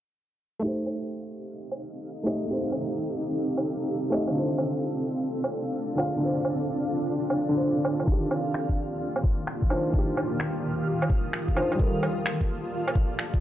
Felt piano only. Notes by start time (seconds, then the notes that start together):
0.59 A3 D#4
0.65 G4 C5
2.23 A3 D#4 G4
2.28 D#5
2.45 A3 D#4
2.51 G4 C5
4.10 A3 D#4 G4
4.14 D#5
4.30 D3 D4
4.36 F4 C5
5.95 D3 D4 F4
6.00 F5
6.17 D3 D4
6.22 F4 C5
7.49 D3 D4
7.54 F4 C5
8.04 D#3 D4
8.09 F4 G4
9.69 D#3 D4 F4
9.73 C5
9.90 D#3 D4
9.95 F4 G4
11.55 D#3 D4 F4 C5
11.75 G3 F4
11.81 A4 A#4